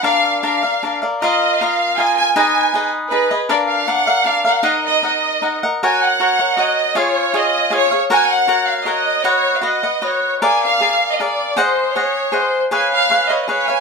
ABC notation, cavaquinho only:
X:1
M:3/4
L:1/8
Q:1/4=157
K:Ebm
V:1 name="Cavaquinho"
[=DB=df]2 [DBdf] [Bdf] [DBdf] [Bdf] | [FBef]2 [FBef]2 [FBef]2 | [EAce]2 [EAce]2 [EAce] [Ace] | [=DB=df]2 [DBdf] [Bdf] [DBdf] [Bdf] |
[EBeg]2 [EBeg]2 [EBeg] [Beg] | [K:F#] [FAcf]2 [FAcf] [Acf] [FAcf]2 | [EGce]2 [EGce]2 [EGce] [Gce] | [FAcf]2 [FAcf]2 [FAcf]2 |
[FBdf]2 [FBdf] [Bdf] [FBdf]2 | [GA=de]2 [GAde]2 [GAde]2 | [G^Bdf]2 [Gdf]2 [GBdf]2 | [GBce]2 [GBce] [Bce] [GBce] [Bce] |]